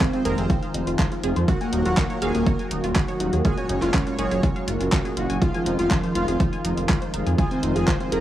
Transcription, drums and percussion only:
0.01 kick loud
0.01 clap loud
0.01 closed hi-hat soft
0.13 closed hi-hat soft
0.25 closed hi-hat medium
0.38 closed hi-hat soft
0.50 kick loud
0.50 closed hi-hat soft
0.63 closed hi-hat soft
0.74 closed hi-hat loud
0.87 closed hi-hat soft
0.99 kick loud
0.99 clap loud
0.99 closed hi-hat soft
1.12 closed hi-hat soft
1.24 closed hi-hat medium
1.36 closed hi-hat soft
1.48 kick loud
1.48 closed hi-hat soft
1.61 closed hi-hat soft
1.73 closed hi-hat loud
1.86 closed hi-hat soft
1.97 kick loud
1.97 clap loud
1.97 closed hi-hat soft
2.10 closed hi-hat soft
2.22 closed hi-hat medium
2.35 closed hi-hat soft
2.47 kick loud
2.47 closed hi-hat soft
2.59 closed hi-hat soft
2.71 closed hi-hat loud
2.84 closed hi-hat soft
2.96 kick loud
2.96 clap loud
2.96 closed hi-hat soft
3.08 closed hi-hat soft
3.20 closed hi-hat medium
3.33 closed hi-hat soft
3.45 kick loud
3.45 closed hi-hat soft
3.58 closed hi-hat soft
3.69 closed hi-hat loud
3.82 clap soft
3.82 closed hi-hat soft
3.94 kick loud
3.94 clap loud
3.94 closed hi-hat soft
4.07 closed hi-hat soft
4.19 closed hi-hat medium
4.31 closed hi-hat soft
4.43 kick loud
4.43 closed hi-hat soft
4.56 closed hi-hat soft
4.68 closed hi-hat loud
4.81 closed hi-hat soft
4.92 kick loud
4.92 clap loud
4.92 closed hi-hat soft
5.05 closed hi-hat soft
5.17 closed hi-hat medium
5.30 closed hi-hat soft
5.42 kick loud
5.42 closed hi-hat soft
5.54 closed hi-hat soft
5.66 closed hi-hat loud
5.79 closed hi-hat soft
5.91 kick loud
5.91 clap loud
5.91 closed hi-hat soft
6.04 closed hi-hat soft
6.15 closed hi-hat medium
6.28 closed hi-hat soft
6.40 kick loud
6.40 closed hi-hat soft
6.53 closed hi-hat soft
6.65 closed hi-hat loud
6.77 closed hi-hat soft
6.89 kick loud
6.89 clap loud
6.89 closed hi-hat soft
7.02 closed hi-hat soft
7.14 closed hi-hat medium
7.27 closed hi-hat soft
7.38 kick loud
7.38 closed hi-hat soft
7.51 closed hi-hat soft
7.63 closed hi-hat loud
7.76 closed hi-hat soft
7.88 kick loud
7.88 clap loud
7.88 closed hi-hat soft
8.00 closed hi-hat soft
8.12 closed hi-hat loud

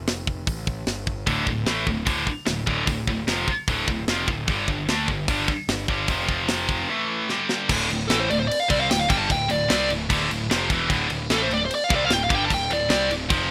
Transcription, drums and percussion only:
0.07 snare loud
0.07 open hi-hat soft
0.27 kick medium
0.47 kick loud
0.47 open hi-hat soft
0.67 kick medium
0.87 snare medium
0.87 open hi-hat soft
1.07 kick medium
1.27 kick medium
1.27 open hi-hat soft
1.47 kick medium
1.66 snare medium
1.66 open hi-hat soft
1.87 kick medium
2.06 kick loud
2.06 open hi-hat medium
2.27 kick medium
2.46 snare medium
2.46 open hi-hat soft
2.67 kick medium
2.87 kick loud
2.87 open hi-hat soft
3.07 kick medium
3.28 snare medium
3.28 open hi-hat soft
3.48 kick medium
3.68 kick loud
3.68 open hi-hat medium
3.88 kick medium
4.08 snare loud
4.08 open hi-hat soft
4.28 kick medium
4.48 kick medium
4.48 open hi-hat soft
4.68 kick medium
4.88 snare medium
4.88 open hi-hat soft
5.08 kick medium
5.28 kick loud
5.28 open hi-hat medium
5.48 kick medium
5.69 snare medium
5.69 open hi-hat medium
5.88 kick medium
6.08 kick loud
6.08 open hi-hat soft
6.29 kick medium
6.48 snare loud
6.48 open hi-hat medium
6.69 kick medium
7.29 snare soft
7.49 snare medium
7.69 kick loud
7.69 crash loud
7.69 crash medium
7.90 crash medium
8.10 snare loud
8.10 crash medium
8.31 crash medium
8.51 crash medium
8.70 kick loud
8.70 crash medium
8.91 snare loud
8.91 crash medium
9.10 kick loud
9.10 crash medium
9.30 kick medium
9.30 crash medium
9.50 crash medium
9.70 snare loud
9.70 crash medium
9.90 crash medium
10.10 kick loud
10.10 crash medium
10.31 crash medium
10.51 snare loud
10.51 crash medium
10.70 kick loud
10.70 crash medium
10.90 kick medium
10.90 crash medium
11.10 crash medium
11.30 snare medium
11.30 crash medium
11.51 crash medium
11.71 crash medium
11.90 kick loud
11.90 crash medium
12.10 snare loud
12.10 crash medium
12.30 kick loud
12.30 crash medium
12.50 kick medium
12.50 crash medium
12.70 crash medium
12.90 snare loud
12.90 crash medium
13.11 crash medium
13.30 kick loud
13.30 crash medium

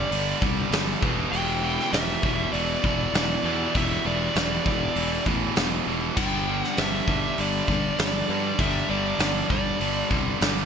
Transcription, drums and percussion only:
0.12 open hi-hat medium
0.42 kick medium
0.72 snare loud
0.72 open hi-hat medium
1.02 kick loud
1.33 open hi-hat medium
1.80 snare soft
1.93 snare loud
1.93 open hi-hat medium
2.23 kick medium
2.54 open hi-hat medium
2.84 kick medium
3.14 snare loud
3.14 open hi-hat medium
3.75 kick medium
3.75 open hi-hat medium
4.35 snare loud
4.35 open hi-hat medium
4.66 kick medium
4.96 open hi-hat medium
5.26 kick medium
5.56 snare loud
5.56 open hi-hat medium
6.17 kick loud
6.17 crash medium
6.64 snare soft
6.77 snare loud
6.77 open hi-hat medium
7.08 kick medium
7.38 open hi-hat medium
7.68 kick medium
7.99 snare loud
7.99 open hi-hat medium
8.58 kick loud
8.58 open hi-hat medium
9.19 snare loud
9.19 open hi-hat medium
9.50 kick loud
9.80 open hi-hat medium
10.11 kick medium
10.41 snare loud
10.41 open hi-hat medium

